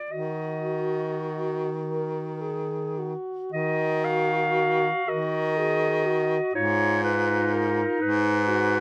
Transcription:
0.00 0.13 D5 medium
0.10 3.14 D#3 soft
0.10 2.65 F#4 soft
0.10 1.71 F#4 soft
0.10 1.85 D#5 medium
1.85 2.43 A#4 soft
2.42 3.00 G#4 soft
2.98 3.53 F#4 soft
3.52 4.90 D#3 medium
3.52 5.10 F#4 medium
3.52 4.06 D#5 medium
4.04 5.54 F#4 soft
4.04 5.10 F5 medium
5.08 6.38 D#3 medium
5.08 5.59 A#4 medium
5.08 6.54 D#5 medium
5.58 6.53 F#4 soft
5.58 6.08 G#4 medium
6.06 6.54 F#4 medium
6.54 7.83 G#2 medium
6.54 7.02 D#4 soft
6.54 8.02 F4 medium
6.54 7.02 C#5 medium
7.03 8.46 D#4 soft
7.03 7.54 B4 medium
7.53 8.04 A#4 medium
8.01 8.80 G#2 medium
8.01 8.49 D#4 medium
8.01 8.80 B4 medium
8.48 8.80 D#4 medium
8.48 8.80 F#4 medium

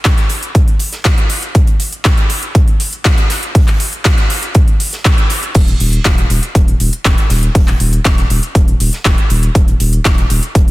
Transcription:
0.05 kick loud
0.05 snare loud
0.05 clap loud
0.05 closed hi-hat medium
0.18 snare soft
0.18 closed hi-hat soft
0.29 closed hi-hat medium
0.29 open hi-hat medium
0.43 closed hi-hat soft
0.55 kick loud
0.55 closed hi-hat medium
0.68 closed hi-hat soft
0.79 closed hi-hat medium
0.79 open hi-hat loud
0.92 snare soft
0.92 closed hi-hat soft
1.05 kick loud
1.05 snare loud
1.05 clap loud
1.05 closed hi-hat medium
1.18 closed hi-hat soft
1.30 closed hi-hat medium
1.30 open hi-hat medium
1.43 closed hi-hat soft
1.55 kick loud
1.55 closed hi-hat medium
1.67 closed hi-hat soft
1.80 closed hi-hat medium
1.80 open hi-hat loud
1.93 closed hi-hat soft
2.05 kick loud
2.05 snare loud
2.05 clap loud
2.05 closed hi-hat medium
2.18 closed hi-hat soft
2.30 closed hi-hat medium
2.30 open hi-hat medium
2.43 closed hi-hat soft
2.55 kick loud
2.55 closed hi-hat medium
2.68 closed hi-hat soft
2.80 closed hi-hat medium
2.80 open hi-hat loud
2.93 closed hi-hat soft
3.05 kick loud
3.05 snare loud
3.05 clap loud
3.05 closed hi-hat medium
3.18 closed hi-hat soft
3.30 snare medium
3.30 closed hi-hat medium
3.30 open hi-hat loud
3.43 closed hi-hat soft
3.55 kick loud
3.55 closed hi-hat medium
3.55 open hi-hat medium
3.68 clap soft
3.68 closed hi-hat soft
3.80 closed hi-hat medium
3.80 open hi-hat loud
3.93 closed hi-hat soft
4.05 kick loud
4.05 snare loud
4.05 clap loud
4.05 closed hi-hat medium
4.18 snare soft
4.18 closed hi-hat soft
4.30 closed hi-hat medium
4.30 open hi-hat loud
4.43 closed hi-hat soft
4.55 kick loud
4.55 closed hi-hat medium
4.68 closed hi-hat soft
4.80 closed hi-hat medium
4.80 open hi-hat loud
4.93 snare soft
4.93 closed hi-hat soft
5.05 kick loud
5.05 snare loud
5.05 clap loud
5.05 closed hi-hat medium
5.18 closed hi-hat soft
5.30 closed hi-hat medium
5.30 open hi-hat loud
5.43 closed hi-hat soft
5.55 5.74 D#1 loud
5.55 kick loud
5.55 closed hi-hat medium
5.55 crash loud
5.67 closed hi-hat soft
5.80 5.99 D#1 loud
5.80 closed hi-hat medium
5.80 open hi-hat loud
5.93 closed hi-hat soft
6.05 6.24 D#1 medium
6.05 kick loud
6.05 snare loud
6.05 clap loud
6.05 closed hi-hat medium
6.17 closed hi-hat soft
6.30 6.40 D#1 medium
6.30 closed hi-hat medium
6.30 open hi-hat medium
6.43 closed hi-hat soft
6.55 6.74 D#1 loud
6.55 kick loud
6.55 closed hi-hat medium
6.68 closed hi-hat soft
6.80 6.90 D#1 medium
6.80 closed hi-hat medium
6.80 open hi-hat loud
6.93 closed hi-hat soft
7.05 7.15 D#1 medium
7.05 kick loud
7.05 snare loud
7.05 clap loud
7.05 closed hi-hat medium
7.18 closed hi-hat soft
7.30 7.49 D#1 medium
7.30 snare medium
7.30 closed hi-hat medium
7.30 open hi-hat medium
7.43 closed hi-hat soft
7.55 7.74 D#1 loud
7.55 kick loud
7.55 closed hi-hat medium
7.55 open hi-hat medium
7.68 clap soft
7.68 closed hi-hat soft
7.80 7.99 D#1 loud
7.80 closed hi-hat medium
7.80 open hi-hat loud
7.93 closed hi-hat soft
8.05 8.24 D#1 medium
8.05 kick loud
8.05 snare loud
8.05 clap loud
8.05 closed hi-hat medium
8.17 snare soft
8.17 closed hi-hat soft
8.30 8.40 D#1 medium
8.30 closed hi-hat medium
8.30 open hi-hat medium
8.43 closed hi-hat soft
8.55 8.74 D#1 loud
8.55 kick loud
8.55 closed hi-hat medium
8.68 closed hi-hat soft
8.80 8.90 D#1 medium
8.80 closed hi-hat medium
8.80 open hi-hat loud
8.93 snare soft
8.93 closed hi-hat soft
9.05 9.15 D#1 loud
9.05 kick loud
9.05 snare loud
9.05 clap loud
9.05 closed hi-hat medium
9.18 closed hi-hat soft
9.30 9.49 D#1 medium
9.30 closed hi-hat medium
9.30 open hi-hat loud
9.43 closed hi-hat soft
9.55 9.74 D#1 loud
9.55 kick loud
9.55 closed hi-hat medium
9.68 closed hi-hat soft
9.80 9.99 D#1 loud
9.80 closed hi-hat medium
9.80 open hi-hat loud
9.93 closed hi-hat soft
10.05 10.24 D#1 medium
10.05 kick loud
10.05 snare loud
10.05 clap loud
10.05 closed hi-hat medium
10.18 closed hi-hat soft
10.30 10.40 D#1 medium
10.30 closed hi-hat medium
10.30 open hi-hat loud
10.43 closed hi-hat soft
10.55 10.71 D#1 loud
10.55 kick loud
10.55 closed hi-hat medium
10.68 closed hi-hat soft

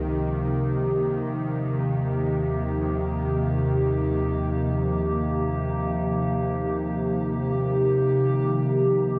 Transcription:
0.00 1.22 C#2 medium
0.00 9.19 C3 medium
0.00 8.62 D#3 medium
0.00 9.19 F3 medium
0.00 9.19 A#3 medium
0.00 9.19 D#4 medium
0.00 9.19 G4 medium
1.27 8.49 D#2 medium
8.55 9.19 C#2 medium

